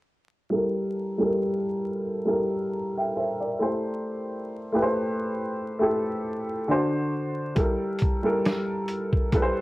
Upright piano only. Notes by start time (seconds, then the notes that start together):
0.50 G3 E4 A4 A#4
1.18 G3 E4 A4 A#4
2.25 G3 E4 A4 A#4
2.97 E5 G5
3.16 C5 E5
3.40 A#4 D5
3.59 A3 E4 G4 C5
4.72 A3 E4 G4 B4
4.82 C5
5.79 A3 E4 G4 A4
6.68 D3 D4 F#4 C5
7.55 G3 E4 A4 A#4
8.23 G3 E4 A4 A#4
9.32 G3 E4 A4 B4
9.42 C5